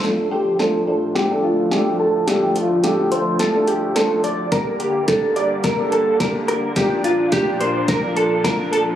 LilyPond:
<<
  \new Staff \with { instrumentName = "Clean electric guitar" } { \time 4/4 \key d \minor \tempo 4 = 107 a'8 g'8 a'8 a'8 g'8 f'8 g'8 a'8 | g'8 f'8 g'8 c''8 a'8 g'8 a'8 d''8 | bes'8 g'8 a'8 d''8 bes'8 a'8 bes'8 bes'8 | g'8 f'8 g'8 c''8 bes'8 a'8 bes'8 a'8 | }
  \new Staff \with { instrumentName = "Grand piano" } { \time 4/4 \key d \minor <a d' f' a'>8. r16 <a d' f' c''>8 <a d' f' c''>8 r16 <a d' f' a'>8 r16 <a d' f' a'>8. r16 | <a d' f' a'>8. r16 <a d' f' a'>8 <a d' f' a'>8 r16 <a d' f' a'>8 r16 <a d' f' c''>8. r16 | <bes d' g' bes'>8. r16 <bes d' g' bes'>8 <bes d' g' bes'>8 r16 <bes d' g' a'>8 r16 <bes d' g' bes'>8. r16 | <bes d' f' bes'>8. r16 <bes d' f' bes'>8 <bes d' f' bes'>8 r16 <bes d' f' bes'>8 r16 <bes d' f' bes'>8. r16 | }
  \new Staff \with { instrumentName = "Supersaw synth" } { \clef bass \time 4/4 \key d \minor <d, a, f>1~ | <d, a, f>1 | <g, d bes>1 | <bes, d'>1 | }
  \new DrumStaff \with { instrumentName = "Drums" } \drummode { \time 4/4 sn4 sn4 sn4 sn4 | <hh sn>8 hh8 <hh sn>8 hh8 <hh sn>8 hh8 <hh sn>8 hh8 | <hh bd sn>8 hh8 <hh bd sn>8 hh8 <hh bd sn>8 hh8 <hh bd sn>8 hh8 | <hh bd sn>8 hh8 <hh bd sn>8 hh8 <hh bd sn>8 hh8 <hh bd sn>8 hh8 | }
>>